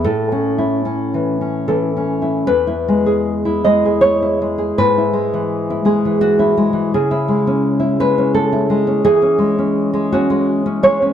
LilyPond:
\new Staff \with { instrumentName = "Nylon-string guitar" } { \time 3/4 \key a \major \tempo 4 = 82 << { a'2 a'4 | \key e \major b'4. dis''8 cis''4 | b'4. gis'8 fis'4 | gis'4. b'8 a'4 |
gis'4. fis'8 r8 cis''8 | } \\ { \tuplet 3/2 { a,8 cis'8 e'8 cis'8 e8 cis'8 e8 cis'8 e'8 } | e,16 e'16 gis16 gis'8 e'16 gis16 gis'8 e'16 gis16 gis'16 | gis,16 e'16 gis16 e8 e'16 gis16 e8 e'16 gis16 e16 | cis16 e'16 gis16 cis'8 e'16 gis16 cis'8 e'16 gis16 cis'16 |
e16 cis'16 gis16 cis'8 gis16 cis'16 gis8 cis'16 gis16 cis'16 | } >> }